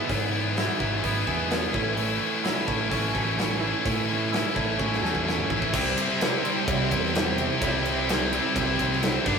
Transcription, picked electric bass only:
0.10 0.66 G#2 medium
0.80 0.99 G#1 medium
1.04 1.22 G#1 medium
1.28 1.65 E2 medium
1.74 1.93 A1 medium
1.97 2.16 A1 loud
2.68 2.87 A1 medium
2.91 3.10 A1 medium
3.15 3.71 A1 medium
3.85 4.42 A2 loud
4.56 4.75 A1 medium
4.79 4.98 A1 medium
5.02 5.40 E2 loud
5.50 5.69 A1 medium
5.73 5.92 C2 loud
6.68 6.86 C2 loud
6.91 7.47 E2 medium
7.62 8.37 C2 loud
8.55 8.74 C2 loud
8.79 9.16 C2 medium
9.26 9.39 G1 loud

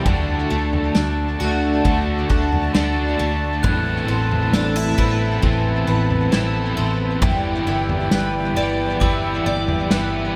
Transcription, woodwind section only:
0.06 3.47 F#4 medium
0.06 3.47 A4 medium
0.06 3.47 D5 medium
0.06 7.18 A5 medium
3.64 10.36 E4 medium
3.64 7.19 A4 medium
3.64 10.36 B4 medium
7.22 9.00 D5 medium
7.22 10.36 G5 medium
9.02 10.36 E5 medium

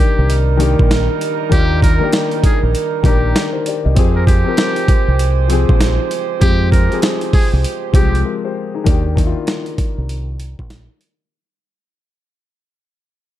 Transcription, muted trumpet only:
0.00 0.44 G4 medium
1.53 1.80 G4 loud
1.83 2.10 A#4 medium
2.45 2.62 G#4 medium
3.05 3.52 G4 medium
4.16 4.26 A#4 medium
4.27 5.34 G4 medium
6.42 6.69 G4 loud
6.72 7.00 A#4 medium
7.33 7.51 G#4 medium
7.95 8.24 G4 medium

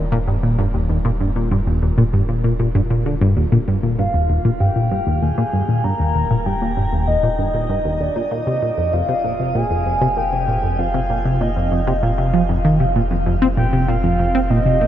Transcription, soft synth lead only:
3.99 4.62 F5 loud
4.60 5.24 G5 loud
5.22 5.85 G#5 loud
5.84 6.47 A#5 loud
6.46 7.07 G5 loud
7.07 8.02 D#5 loud
8.00 8.33 D5 medium
8.31 8.95 D#5 loud
8.93 9.57 F5 loud
9.55 10.19 G#5 loud
10.17 10.81 G5 loud
10.79 11.42 F5 loud
11.41 12.04 D#5 medium
12.03 12.96 F5 medium
13.57 13.90 G5 loud
13.88 14.52 F5 loud
14.50 14.87 D#5 loud

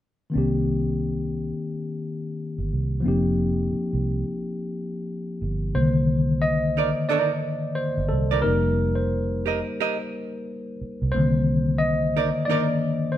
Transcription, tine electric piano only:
0.30 2.98 D#3 medium
0.30 2.99 A#3 medium
0.30 3.00 C4 medium
0.36 3.01 D4 medium
0.36 3.02 G4 medium
3.00 5.68 F3 medium
3.00 5.69 A#3 medium
3.04 5.70 C4 medium
3.04 5.71 D#4 medium
3.04 5.72 G4 medium
5.74 8.40 D3 medium
5.74 8.40 D#3 medium
5.74 8.40 A#3 soft
5.74 6.44 C5 medium
6.42 7.11 D#5 loud
7.09 7.78 D5 loud
7.75 8.10 C5 medium
8.09 8.44 A4 medium
8.42 8.90 G3 medium
8.42 8.90 A#3 medium
8.42 8.91 D#4 medium
8.42 8.98 A#4 medium
8.96 10.75 C5 medium
11.12 12.10 D3 medium
11.12 12.10 D#3 medium
11.12 12.10 A#3 medium
11.12 11.82 C5 loud
11.78 12.49 D#5 loud
12.45 12.78 D#3 soft
12.45 12.78 A#3 soft
12.45 12.78 D4 soft
12.45 13.16 D5 loud
13.12 13.18 C5 medium

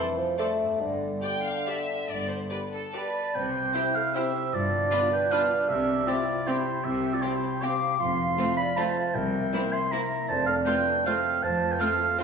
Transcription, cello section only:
0.80 1.15 G2 soft
2.08 2.43 G2 soft
3.35 3.68 C3 medium
4.53 4.85 G2 medium
5.69 6.00 C3 medium
6.85 7.16 C3 medium
8.00 8.31 F2 medium
9.14 9.46 C2 medium
10.29 10.60 F2 medium
11.43 11.74 F2 medium

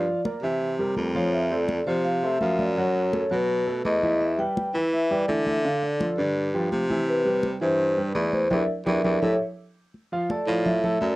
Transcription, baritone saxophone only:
0.43 0.93 C3 medium
0.97 1.81 F2 medium
1.87 2.37 C3 medium
2.41 3.25 F#2 medium
3.31 3.81 B2 medium
3.85 4.42 E2 medium
4.74 5.24 E3 medium
5.28 6.12 D3 medium
6.18 6.68 G2 medium
6.72 7.55 C3 medium
7.61 8.11 G2 medium
8.15 8.48 E2 medium
8.51 8.64 E2 medium
8.86 9.00 E2 loud
9.04 9.18 E2 medium
9.22 9.35 A2 medium
10.47 10.97 A2 loud
11.01 11.16 F#2 loud

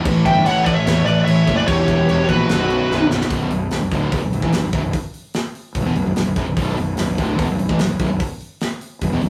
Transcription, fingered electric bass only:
0.06 0.19 A1 loud
0.26 0.40 G1 loud
0.47 0.74 A1 loud
0.87 1.01 E2 loud
1.08 1.21 A1 medium
1.27 1.41 A1 loud
1.48 1.61 F#1 medium
1.68 1.82 E1 medium
1.88 2.02 E1 medium
2.09 2.23 E1 loud
2.29 2.43 A#1 loud
2.49 2.77 B0 medium
2.90 3.04 B0 loud
3.10 3.24 B0 medium
3.30 3.49 B0 medium
3.51 3.70 B0 medium
3.71 3.81 B0 medium
3.81 3.91 B0 medium
3.91 4.11 D1 medium
4.13 4.22 E1 medium
4.23 4.31 B0 medium
4.32 4.42 B0 medium
4.43 4.52 A1 medium
4.53 4.63 B0 medium
4.63 4.72 B0 medium
4.73 4.83 B0 medium
4.83 4.93 B0 medium
5.75 5.85 B0 medium
5.85 5.94 E1 medium
5.95 6.05 B0 medium
6.06 6.16 B0 medium
6.16 6.26 B0 medium
6.26 6.36 B0 medium
6.36 6.46 B0 medium
6.47 6.56 B0 medium
6.56 6.76 B0 medium
6.78 6.97 B0 medium
6.98 7.07 B0 medium
7.08 7.18 B0 medium
7.18 7.37 D1 medium
7.39 7.48 E1 medium
7.50 7.59 B0 medium
7.60 7.68 B0 medium
7.69 7.79 A1 medium
7.81 7.90 B0 medium
7.91 7.99 B0 medium
7.99 8.09 B0 medium
8.11 8.20 B0 medium
9.02 9.12 B0 medium
9.13 9.21 E1 medium
9.22 9.29 B0 medium

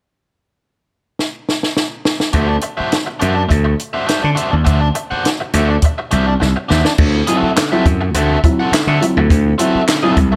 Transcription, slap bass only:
2.34 2.57 D2 loud
2.80 muted slap bass stroke soft
3.22 3.45 F#2 medium
3.51 3.73 D2 medium
4.24 4.35 D3 medium
4.53 4.67 D#2 medium
4.67 4.90 D2 medium
5.12 muted slap bass stroke soft
5.54 5.76 D2 medium
6.12 6.35 C2 medium
6.42 6.53 C2 medium
6.71 6.82 D#2 medium
6.98 7.21 D2 loud
7.43 muted slap bass stroke soft
7.86 8.09 F#2 medium
8.14 8.37 D2 medium
8.72 muted slap bass stroke soft
8.87 8.98 D3 medium
9.17 9.27 D2 medium
9.30 9.53 D2 loud
9.75 muted slap bass stroke soft
10.17 10.36 C2 loud

